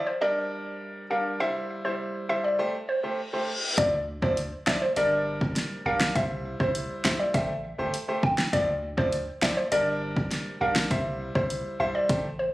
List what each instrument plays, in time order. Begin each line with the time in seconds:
0.07 synth pluck C5
0.21 grand piano G3 D4 A#4, synth pluck D5
1.10 grand piano G3 D4 A#4, synth pluck F5
1.40 grand piano G3 E4 C5, synth pluck E5
1.84 grand piano G3 E4 C5, synth pluck C5
2.29 grand piano G3 E4 C5, synth pluck E5
2.44 synth pluck D5
2.59 grand piano A3 G4 C5, reverse cymbal
2.89 synth pluck C5
3.03 grand piano A3 G4 C5
3.33 grand piano A3 G4 C5
3.78 sub bass D2, grand piano F3 E4 D5, synth pluck D5, kick, closed hi-hat
4.22 sub bass D2, grand piano F3 E4 D5, synth pluck C5, kick
4.37 closed hi-hat
4.67 sub bass A1, grand piano F3 E4 D5, synth pluck E5, finger snap, snare
4.82 synth pluck C5
4.96 sub bass G1, grand piano G3 D4 A#4, synth pluck D5, closed hi-hat
5.41 kick
5.56 snare, closed hi-hat
5.85 sub bass A#1, grand piano G3 D4 A#4, synth pluck F5
6.00 finger snap, snare
6.15 sub bass C2, grand piano G3 E4 C5, synth pluck E5, kick, closed hi-hat
6.60 sub bass C2, grand piano G3 E4 C5, synth pluck C5, kick
6.75 closed hi-hat
7.04 sub bass A#1, grand piano G3 E4 C5, synth pluck E5, finger snap, snare
7.20 synth pluck D5
7.34 sub bass A1, grand piano A3 G4 C5, synth pluck E5, kick, closed hi-hat
7.78 sub bass G1, grand piano A3 G4 C5
7.94 closed hi-hat
8.08 grand piano A3 G4 C5
8.23 synth pluck G5, kick
8.38 finger snap, snare
8.53 sub bass D2, grand piano F3 E4 D5, synth pluck D5, kick, closed hi-hat
8.97 sub bass D2, grand piano F3 E4 D5, synth pluck C5, kick
9.13 closed hi-hat
9.42 sub bass A1, grand piano F3 E4 D5, synth pluck E5, finger snap, snare
9.57 synth pluck C5
9.72 sub bass G1, grand piano G3 D4 A#4, synth pluck D5, closed hi-hat
10.17 kick
10.31 snare, closed hi-hat
10.61 sub bass A#1, grand piano G3 D4 A#4, synth pluck F5
10.76 finger snap, snare
10.90 sub bass C2, grand piano G3 E4 C5, synth pluck E5, kick, closed hi-hat
11.35 sub bass C2, grand piano G3 E4 C5, synth pluck C5, kick
11.50 closed hi-hat
11.80 sub bass A#1, grand piano G3 E4 C5, synth pluck E5
11.95 synth pluck D5
12.09 sub bass A1, grand piano A3 G4 C5, kick, closed hi-hat
12.39 synth pluck C5